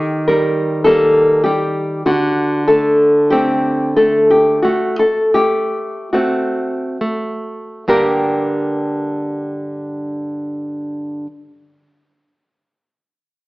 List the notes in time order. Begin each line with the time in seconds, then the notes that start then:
Already playing: D#3 G4
0.28 G3 A#4
0.84 G3 A#3 A4
1.44 G3 G4
2.06 D3 F#4
2.68 A3 A4
3.30 A3 C4 G4
3.96 A3 A4
4.30 G4
4.62 A3 F#4
4.99 A4
5.34 A3 G4
6.13 A3 C4 F#4
7.01 A3
7.88 G2 D3 A#3 D4 G4 A#4